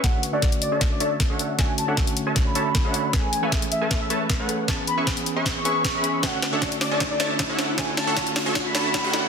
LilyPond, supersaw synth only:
\new Staff \with { instrumentName = "Supersaw synth" } { \time 4/4 \key d \lydian \tempo 4 = 155 <d' a' fis''>16 r8 <d' a' cis'' e'' fis''>16 r8. <d' a' cis'' e'' a''>8. <d' a' cis'' e'' a''>16 r8 <d' a' cis'' e'' fis''>8. | <d' a' cis'' e'' fis''>16 r8 <d' a' cis'' e'' fis''>16 r8. <d' a' cis'' e'' a''>8. <d' a' cis'' e'' a''>16 r8 <d' a' cis'' e'' fis''>8. | <a a' b' cis'' gis''>16 r8 <a a' b' cis'' gis''>16 r8. <a a' b' cis'' a''>8. <a a' b' cis'' a''>16 r8 <a a' b' cis'' fis''>8. | <cis' gis' b' e'' cis'''>16 r8 <cis' gis' b' e'' cis'''>16 r8. <cis' gis' b' e'' cis'''>8. <cis' gis' b' e'' cis'''>16 r8 <cis' gis' b' e'' b''>8. |
<d' a' cis'' e'' fis''>16 r8 <d' a' cis'' e'' fis''>16 r8. <d' a' cis'' e'' a''>8. <d' a' cis'' e'' a''>16 r8 <d' a' cis'' e'' fis''>8. | <d' a' cis'' fis''>16 r8 <d' a' cis'' e'' fis''>16 r8. <d' a' cis'' e'' a''>8. <d' a' cis'' e'' a''>16 r8 <d' a' cis'' e'' fis''>8. | }